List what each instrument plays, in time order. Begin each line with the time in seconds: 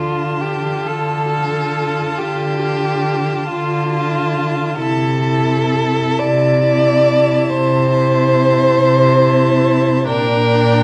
Already playing: cello D3, violin F4 A5, viola F4
0.41 violin G4
0.86 cello D3, violin A4
1.30 viola F4, violin A5
2.18 cello D3, violin G4
2.63 viola F4, violin A5
3.50 cello D3, violin F4
3.93 viola F4, violin A5
4.77 cello C3, viola E4, violin A4 A5
5.24 viola E4, violin A5
6.18 cello C3, violin D5
6.64 viola E4, violin A5
7.49 cello C3, violin C5
7.93 viola E4, violin A5
8.78 cello C3
9.20 viola E4, violin A5
10.08 cello A#2, viola D4, violin A#4 G5